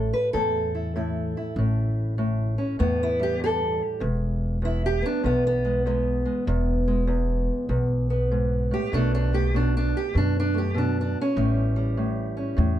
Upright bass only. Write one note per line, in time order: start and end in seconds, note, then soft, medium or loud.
0.00 0.11 A1 medium
0.34 1.34 E2 medium
1.56 2.56 A1 medium
2.80 3.80 E2 medium
4.01 5.01 E1 medium
5.24 6.24 B1 medium
6.47 7.47 E1 medium
7.69 8.69 B1 medium
8.93 9.92 B1 medium
10.15 11.14 F#2 medium
11.37 12.36 A1 medium
12.58 12.79 E2 medium